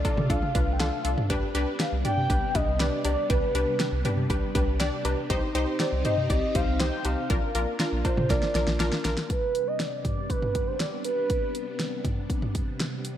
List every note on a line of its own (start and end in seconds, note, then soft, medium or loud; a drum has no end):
0.00 5.26 C3 medium
0.00 1.28 A3 medium
0.00 5.26 D4 medium
0.00 1.28 F4 medium
0.00 0.31 D5 medium
0.05 0.26 D4 medium
0.05 0.26 F4 medium
0.05 0.26 A4 medium
0.05 kick loud
0.05 closed hi-hat medium
0.05 cowbell medium
0.17 0.28 C3 loud
0.17 mid tom loud
0.30 0.41 C2 loud
0.30 0.51 D4 medium
0.30 0.51 F4 medium
0.30 0.51 A4 medium
0.30 0.73 F5 loud
0.30 kick medium
0.30 closed hi-hat medium
0.42 mid tom medium
0.55 0.66 C2 loud
0.55 0.76 D4 medium
0.55 0.76 F4 medium
0.55 0.76 B4 medium
0.55 kick medium
0.55 closed hi-hat medium
0.67 0.78 C2 loud
0.73 0.81 G5 medium
0.80 0.91 C2 loud
0.80 1.01 D4 loud
0.80 1.01 F4 medium
0.80 1.01 A4 loud
0.80 1.17 F5 medium
0.80 snare loud
0.80 closed hi-hat medium
1.05 1.16 C2 loud
1.05 1.26 D4 medium
1.05 1.26 F4 medium
1.05 1.26 A4 medium
1.05 closed hi-hat medium
1.18 mid tom loud
1.30 1.41 C2 loud
1.30 5.26 G3 medium
1.30 5.26 B3 medium
1.30 1.51 D4 loud
1.30 1.51 G4 loud
1.30 1.51 B4 loud
1.30 kick loud
1.30 closed hi-hat medium
1.55 1.66 C2 loud
1.55 1.76 D4 loud
1.55 1.76 G4 loud
1.55 1.76 B4 loud
1.55 closed hi-hat medium
1.80 2.01 D4 medium
1.80 2.01 G4 medium
1.80 2.01 B4 medium
1.80 1.91 F5 loud
1.80 snare loud
1.80 closed hi-hat medium
1.92 2.03 C2 loud
2.05 2.26 D4 medium
2.05 2.26 G4 medium
2.05 2.26 D5 medium
2.05 2.56 G5 loud
2.05 closed hi-hat medium
2.05 mid tom medium
2.17 2.28 C3 loud
2.30 2.41 C2 loud
2.30 2.51 D4 medium
2.30 2.51 G4 medium
2.30 2.51 B4 medium
2.30 kick medium
2.30 closed hi-hat medium
2.55 2.66 C2 loud
2.55 2.76 D4 medium
2.55 2.76 G4 medium
2.55 2.76 B4 medium
2.55 2.81 D#5 loud
2.55 kick medium
2.55 closed hi-hat medium
2.68 2.78 C2 loud
2.80 2.91 C2 loud
2.80 3.01 D4 loud
2.80 3.01 G4 medium
2.80 3.01 B4 loud
2.80 3.04 D5 loud
2.80 snare loud
2.80 closed hi-hat medium
3.05 3.16 C2 loud
3.05 3.26 D4 medium
3.05 3.26 G4 medium
3.05 3.28 D5 medium
3.05 3.26 D5 medium
3.05 closed hi-hat medium
3.05 cowbell medium
3.30 3.41 C2 loud
3.30 3.51 D4 loud
3.30 3.51 G4 medium
3.30 4.26 B4 loud
3.30 3.51 B4 loud
3.30 kick loud
3.30 closed hi-hat medium
3.55 3.66 C2 loud
3.55 3.76 D4 loud
3.55 3.76 G4 medium
3.55 3.76 B4 loud
3.55 closed hi-hat medium
3.80 4.01 D4 medium
3.80 4.01 G4 medium
3.80 4.01 B4 medium
3.80 snare loud
3.80 closed hi-hat medium
3.92 4.03 C2 loud
4.05 4.26 D4 medium
4.05 4.26 G4 medium
4.05 4.26 B4 loud
4.05 closed hi-hat medium
4.05 mid tom medium
4.17 4.28 C3 loud
4.30 4.41 C2 loud
4.30 4.51 D4 medium
4.30 4.51 G4 medium
4.30 4.51 B4 loud
4.30 kick loud
4.30 closed hi-hat medium
4.55 4.66 C2 loud
4.55 4.76 D4 medium
4.55 4.76 G4 medium
4.55 4.76 B4 loud
4.55 kick loud
4.55 closed hi-hat medium
4.67 4.78 C2 loud
4.80 4.91 C2 loud
4.80 5.01 D4 loud
4.80 5.01 G4 loud
4.80 5.01 D5 loud
4.80 snare loud
4.80 closed hi-hat medium
5.05 5.16 C2 loud
5.05 5.26 D4 medium
5.05 5.26 G4 medium
5.05 5.26 B4 loud
5.05 closed hi-hat medium
5.05 cowbell medium
5.30 5.41 C2 loud
5.30 7.28 C3 medium
5.30 7.28 C4 medium
5.30 7.28 D#4 medium
5.30 5.51 D#4 loud
5.30 7.28 G4 medium
5.30 5.51 G4 loud
5.30 5.51 C5 loud
5.30 kick loud
5.30 closed hi-hat medium
5.55 5.66 C2 loud
5.55 5.76 D#4 loud
5.55 5.76 G4 loud
5.55 5.76 C5 loud
5.55 closed hi-hat medium
5.80 6.01 D#4 medium
5.80 6.01 G4 medium
5.80 6.03 C5 medium
5.80 6.01 D5 medium
5.80 snare loud
5.80 closed hi-hat medium
5.92 6.03 C2 loud
6.05 6.26 D#4 medium
6.05 6.26 G4 medium
6.05 6.26 C5 medium
6.05 6.28 D#5 medium
6.05 closed hi-hat medium
6.05 mid tom medium
6.18 6.28 C3 loud
6.30 6.41 C2 loud
6.30 6.51 D#4 medium
6.30 6.51 G4 medium
6.30 6.51 D5 medium
6.30 6.57 D#5 loud
6.30 kick medium
6.30 closed hi-hat medium
6.55 6.66 C2 loud
6.55 6.76 D#4 medium
6.55 6.76 G4 medium
6.55 6.76 C5 medium
6.55 6.80 F5 loud
6.55 kick medium
6.55 closed hi-hat medium
6.68 6.78 C2 loud
6.80 6.91 C2 loud
6.80 7.01 D#4 loud
6.80 7.01 G4 medium
6.80 7.01 C5 loud
6.80 7.07 G5 loud
6.80 snare loud
6.80 closed hi-hat medium
7.05 7.16 C2 loud
7.05 7.26 D#4 medium
7.05 7.26 G4 medium
7.05 7.26 C5 medium
7.05 7.80 F5 loud
7.05 closed hi-hat medium
7.05 cowbell medium
7.30 7.41 A#1 loud
7.30 9.28 A#3 medium
7.30 9.28 D4 medium
7.30 7.51 D4 loud
7.30 9.28 F4 medium
7.30 7.51 F4 medium
7.30 7.51 A#4 loud
7.30 kick loud
7.30 closed hi-hat medium
7.55 7.66 A#1 loud
7.55 7.76 D4 loud
7.55 7.76 F4 medium
7.55 7.76 A#4 loud
7.55 closed hi-hat medium
7.80 8.01 D4 medium
7.80 8.01 F4 medium
7.80 8.01 A#4 loud
7.80 snare loud
7.80 closed hi-hat medium
7.92 8.03 A#1 medium
8.05 8.26 D4 medium
8.05 8.26 F4 medium
8.05 8.31 C5 loud
8.05 8.26 C5 medium
8.05 kick medium
8.05 closed hi-hat medium
8.05 cowbell medium
8.17 8.28 A#2 medium
8.17 mid tom loud
8.30 8.41 A#1 loud
8.30 8.51 D4 medium
8.30 8.51 F4 medium
8.30 8.51 A#4 medium
8.30 8.80 D5 loud
8.30 kick loud
8.30 snare medium
8.30 closed hi-hat medium
8.42 snare medium
8.55 8.66 A#1 loud
8.55 8.76 D4 medium
8.55 8.76 F4 medium
8.55 8.76 A#4 medium
8.55 snare medium
8.55 closed hi-hat medium
8.67 8.78 A#1 loud
8.67 snare medium
8.80 8.91 A#1 loud
8.80 9.01 D4 loud
8.80 9.01 F4 medium
8.80 9.01 A#4 loud
8.80 snare medium
8.80 closed hi-hat medium
8.92 snare medium
9.05 9.16 A#1 loud
9.05 9.26 D4 medium
9.05 9.26 F4 medium
9.05 9.26 A#4 loud
9.05 snare loud
9.05 closed hi-hat medium
9.17 snare medium
9.30 13.18 C3 medium
9.30 13.18 G3 medium
9.30 13.18 B3 medium
9.30 13.18 D4 medium
9.30 9.69 B4 loud
9.30 kick loud
9.30 closed hi-hat medium
9.55 closed hi-hat medium
9.67 9.81 D#5 loud
9.80 10.04 D5 loud
9.80 snare loud
9.80 closed hi-hat medium
10.05 10.31 D5 medium
10.05 kick medium
10.05 closed hi-hat medium
10.05 mid tom medium
10.30 10.69 B4 loud
10.30 kick medium
10.30 closed hi-hat medium
10.42 mid tom medium
10.55 kick medium
10.55 closed hi-hat medium
10.67 10.81 C5 medium
10.80 11.04 D5 loud
10.80 snare loud
10.80 closed hi-hat medium
11.05 12.01 B4 medium
11.05 closed hi-hat medium
11.30 kick loud
11.30 closed hi-hat medium
11.55 closed hi-hat medium
11.80 snare medium
11.80 closed hi-hat medium
12.05 kick medium
12.05 closed hi-hat medium
12.05 mid tom medium
12.30 kick medium
12.30 closed hi-hat medium
12.42 mid tom medium
12.55 kick medium
12.55 closed hi-hat medium
12.80 snare loud
12.80 closed hi-hat medium
13.05 closed hi-hat medium